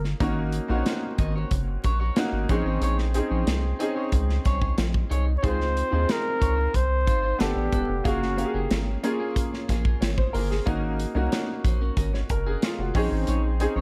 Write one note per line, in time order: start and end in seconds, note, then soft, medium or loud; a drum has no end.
0.00 0.14 G1 medium
0.00 0.20 A#3 medium
0.00 0.20 C#4 medium
0.00 0.23 F4 medium
0.00 0.22 G#4 medium
0.04 muted clean electric guitar stroke soft
0.04 snare soft
0.20 0.60 G#1 loud
0.20 0.66 A#3 medium
0.20 0.66 C#4 medium
0.20 0.67 D#4 medium
0.20 0.42 F#4 medium
0.20 0.67 F#4 loud
0.20 0.38 A#4 medium
0.20 0.37 C#5 medium
0.20 kick loud
0.20 closed hi-hat medium
0.38 muted clean electric guitar stroke soft
0.52 muted clean electric guitar stroke soft
0.52 closed hi-hat medium
0.68 0.83 A#1 loud
0.68 1.91 A#3 medium
0.68 0.76 C4 soft
0.68 1.91 D#4 medium
0.68 1.92 F#4 medium
0.68 0.85 F#4 medium
0.68 0.86 A#4 medium
0.68 0.86 C#5 medium
0.75 1.94 C#4 medium
0.86 snare loud
0.86 closed hi-hat medium
1.02 muted clean electric guitar stroke soft
1.18 1.45 G#1 medium
1.18 1.36 F#4 medium
1.18 1.35 A#4 medium
1.18 1.35 D#5 medium
1.18 kick loud
1.18 closed hi-hat medium
1.36 1.50 F#4 medium
1.36 1.51 A#4 medium
1.36 1.51 C#5 medium
1.51 1.77 F#1 medium
1.51 muted clean electric guitar stroke soft
1.51 kick medium
1.51 closed hi-hat medium
1.68 muted clean electric guitar stroke soft
1.84 2.11 A#1 medium
1.84 2.00 F#4 medium
1.84 2.00 A#4 medium
1.84 1.99 C#5 medium
1.84 kick medium
1.84 closed hi-hat medium
2.00 2.16 F#4 medium
2.00 2.16 A#4 medium
2.00 2.16 C#5 medium
2.16 2.49 A#3 medium
2.16 2.48 C#4 medium
2.16 2.49 D#4 medium
2.16 2.50 F#4 medium
2.16 muted clean electric guitar stroke soft
2.16 snare loud
2.16 closed hi-hat medium
2.33 2.46 G#1 medium
2.33 muted clean electric guitar stroke soft
2.49 2.63 A#1 loud
2.49 3.10 C4 medium
2.49 3.10 C#4 medium
2.49 2.66 D#4 medium
2.49 3.11 D#4 medium
2.49 2.65 G#4 medium
2.49 3.11 G#4 medium
2.49 2.64 C#5 medium
2.49 kick loud
2.49 closed hi-hat medium
2.65 2.79 A1 medium
2.65 2.81 D#4 soft
2.65 2.81 G#4 soft
2.65 2.82 C#5 medium
2.81 3.21 A#1 loud
2.81 3.03 D#4 medium
2.81 2.98 G#4 medium
2.81 2.97 C#5 medium
2.81 closed hi-hat medium
2.98 muted clean electric guitar stroke soft
2.98 snare soft
3.14 3.76 C4 medium
3.14 3.76 C#4 medium
3.14 3.76 D#4 medium
3.14 3.76 G#4 medium
3.14 muted clean electric guitar stroke soft
3.14 closed hi-hat medium
3.30 3.44 A#1 medium
3.30 3.46 D#4 soft
3.30 3.46 G#4 soft
3.30 3.47 C#5 soft
3.47 3.73 C2 medium
3.47 muted clean electric guitar stroke soft
3.47 snare loud
3.47 closed hi-hat medium
3.63 muted clean electric guitar stroke soft
3.79 5.01 C4 medium
3.79 5.02 C#4 medium
3.79 3.96 D#4 medium
3.79 5.02 D#4 medium
3.79 3.95 G#4 medium
3.79 5.02 G#4 medium
3.79 3.95 D#5 medium
3.79 closed hi-hat medium
3.96 4.10 D#4 soft
3.96 4.11 G#4 medium
3.96 4.12 C#5 medium
4.12 4.39 C#2 medium
4.12 kick medium
4.12 closed hi-hat medium
4.29 muted clean electric guitar stroke soft
4.29 snare soft
4.44 4.72 C2 medium
4.44 4.60 D#4 medium
4.44 4.60 G#4 medium
4.44 4.59 C#5 medium
4.44 kick medium
4.44 snare soft
4.44 closed hi-hat medium
4.61 4.76 D#4 soft
4.61 4.76 G#4 medium
4.61 4.76 C#5 medium
4.61 kick medium
4.77 5.04 A#1 medium
4.77 muted clean electric guitar stroke soft
4.77 snare loud
4.77 closed hi-hat medium
4.94 muted clean electric guitar stroke soft
4.94 kick medium
5.10 5.37 C2 medium
5.10 5.32 D#4 medium
5.10 5.26 G#4 medium
5.10 5.25 C#5 medium
5.10 closed hi-hat medium
5.26 muted clean electric guitar stroke soft
5.37 5.48 C#5 medium
5.42 5.83 C#2 loud
5.42 5.89 C4 medium
5.42 5.64 D#4 medium
5.42 5.89 D#4 medium
5.42 5.59 F4 medium
5.42 5.89 F4 medium
5.42 5.89 G#4 medium
5.42 5.58 C5 medium
5.42 kick loud
5.42 closed hi-hat medium
5.47 6.13 C5 loud
5.59 muted clean electric guitar stroke soft
5.59 snare soft
5.77 closed hi-hat medium
5.90 6.06 D#2 medium
5.90 7.13 C4 medium
5.90 7.14 D#4 medium
5.90 6.06 D#4 soft
5.90 7.14 F4 medium
5.90 6.07 F4 soft
5.90 7.14 G#4 medium
5.90 6.07 C5 medium
6.08 6.77 A#4 medium
6.08 muted clean electric guitar stroke soft
6.08 snare loud
6.08 closed hi-hat medium
6.24 muted clean electric guitar stroke soft
6.40 6.68 C#2 medium
6.40 6.56 D#4 medium
6.40 6.56 F4 medium
6.40 6.56 C#5 medium
6.40 kick medium
6.40 closed hi-hat medium
6.56 6.72 D#4 soft
6.56 6.72 F4 medium
6.56 6.73 C5 medium
6.73 7.09 C2 medium
6.73 7.42 C5 medium
6.73 muted clean electric guitar stroke soft
6.73 kick medium
6.73 closed hi-hat medium
6.90 muted clean electric guitar stroke soft
7.06 7.33 G#1 medium
7.06 7.23 D#4 medium
7.06 7.22 F4 medium
7.06 7.21 C5 medium
7.06 kick medium
7.06 closed hi-hat medium
7.23 7.39 D#4 medium
7.23 7.40 F4 medium
7.23 7.40 C5 medium
7.38 7.53 G1 loud
7.38 8.00 B3 medium
7.38 8.00 D4 medium
7.38 8.05 G4 medium
7.38 8.01 A4 medium
7.38 8.00 F#5 medium
7.38 muted clean electric guitar stroke soft
7.38 snare loud
7.38 closed hi-hat medium
7.56 7.69 A1 medium
7.72 7.86 E1 medium
7.72 7.94 B3 medium
7.72 7.88 F#4 medium
7.72 7.88 A4 medium
7.72 kick medium
7.72 closed hi-hat medium
7.88 8.02 F1 medium
7.88 muted clean electric guitar stroke soft
8.04 8.44 F#1 medium
8.04 8.35 A#3 medium
8.04 8.26 A#3 medium
8.04 8.35 C#4 medium
8.04 8.21 F4 medium
8.04 8.67 F#4 medium
8.04 8.35 G#4 medium
8.04 8.20 G#4 medium
8.04 8.35 F5 medium
8.04 kick loud
8.04 closed hi-hat medium
8.21 muted clean electric guitar stroke soft
8.21 snare soft
8.37 8.98 A#3 medium
8.37 8.98 C#4 medium
8.37 8.44 G4 medium
8.37 8.99 F5 medium
8.37 muted clean electric guitar stroke soft
8.37 closed hi-hat medium
8.45 9.02 G#4 medium
8.54 8.67 F#1 medium
8.54 8.69 A#3 soft
8.54 8.69 F4 soft
8.54 8.70 G#4 medium
8.70 8.97 G#1 medium
8.70 muted clean electric guitar stroke soft
8.70 snare loud
8.70 closed hi-hat medium
8.87 muted clean electric guitar stroke soft
9.03 10.25 A#3 medium
9.03 9.20 A#3 medium
9.03 10.25 C#4 medium
9.03 10.25 F4 medium
9.03 9.19 F4 medium
9.03 10.02 G#4 medium
9.03 9.19 A#4 medium
9.03 closed hi-hat medium
9.20 9.35 A#3 soft
9.20 9.36 F4 medium
9.20 9.36 G#4 medium
9.36 muted clean electric guitar stroke soft
9.36 kick medium
9.36 closed hi-hat medium
9.53 muted clean electric guitar stroke soft
9.53 snare soft
9.68 9.95 A#1 medium
9.68 9.85 A#3 medium
9.68 9.84 F4 medium
9.68 9.84 G#4 medium
9.68 kick medium
9.68 snare soft
9.68 closed hi-hat medium
9.85 10.00 A#3 medium
9.85 10.01 F4 medium
9.85 10.01 G#4 medium
9.85 kick medium
10.01 10.27 G#1 medium
10.01 10.16 C#5 medium
10.01 muted clean electric guitar stroke soft
10.01 snare loud
10.01 closed hi-hat medium
10.18 10.33 C5 medium
10.18 muted clean electric guitar stroke soft
10.18 kick medium
10.33 10.60 G1 medium
10.33 10.55 A#3 medium
10.33 10.50 F4 medium
10.33 10.49 G#4 medium
10.33 10.49 A#4 medium
10.33 open hi-hat medium
10.50 10.81 G#4 medium
10.50 muted clean electric guitar stroke soft
10.50 snare soft
10.65 11.06 G#1 loud
10.65 11.12 A#3 medium
10.65 10.87 C#4 medium
10.65 11.12 C#4 medium
10.65 11.12 D#4 medium
10.65 10.83 F#4 medium
10.65 11.12 F#4 medium
10.65 10.81 A#4 medium
10.65 kick loud
10.65 closed hi-hat medium
10.83 muted clean electric guitar stroke soft
10.99 muted clean electric guitar stroke soft
10.99 closed hi-hat medium
11.15 11.28 C2 medium
11.15 12.37 A#3 medium
11.15 12.37 C#4 medium
11.15 11.31 C#4 soft
11.15 12.37 D#4 medium
11.15 11.32 F#4 soft
11.15 11.97 F#4 medium
11.15 11.32 A#4 medium
11.32 snare loud
11.32 closed hi-hat medium
11.48 muted clean electric guitar stroke soft
11.64 11.90 A#1 medium
11.64 11.81 C#4 medium
11.64 11.80 F#4 medium
11.64 11.80 C5 medium
11.64 kick loud
11.64 closed hi-hat medium
11.81 11.96 C#4 medium
11.81 11.96 F#4 medium
11.81 11.97 A#4 medium
11.97 12.23 G#1 loud
11.97 12.18 C#4 medium
11.97 12.13 F#4 medium
11.97 12.12 A#4 medium
11.97 kick medium
11.97 closed hi-hat medium
12.13 12.29 C#5 medium
12.13 muted clean electric guitar stroke soft
12.13 snare soft
12.29 12.56 F#1 medium
12.29 12.45 A#4 medium
12.29 muted clean electric guitar stroke soft
12.29 kick medium
12.29 closed hi-hat medium
12.46 12.61 C#4 medium
12.46 12.61 F#4 medium
12.46 12.62 G#4 medium
12.46 12.62 A#4 medium
12.62 12.78 F4 medium
12.62 muted clean electric guitar stroke soft
12.62 snare loud
12.62 closed hi-hat medium
12.78 12.92 F1 medium
12.78 13.10 F#4 medium
12.78 muted clean electric guitar stroke soft
12.94 13.08 A#1 loud
12.94 13.56 C4 medium
12.94 13.56 C#4 medium
12.94 13.16 D#4 medium
12.94 13.56 D#4 medium
12.94 13.11 G#4 medium
12.94 13.56 G#4 medium
12.94 13.10 C#5 medium
12.94 kick medium
12.94 open hi-hat medium
13.11 13.25 A1 medium
13.11 muted clean electric guitar stroke soft
13.27 13.67 A#1 medium
13.27 13.48 D#4 medium
13.27 13.44 G#4 medium
13.27 13.42 C#5 medium
13.27 closed hi-hat medium
13.44 muted clean electric guitar stroke soft
13.60 13.81 C4 medium
13.60 13.81 C#4 medium
13.60 13.81 D#4 medium
13.60 13.81 G#4 medium
13.60 muted clean electric guitar stroke soft
13.60 closed hi-hat medium
13.76 13.81 A#1 medium
13.76 13.81 D#4 soft
13.76 13.81 G#4 soft
13.76 13.81 C#5 medium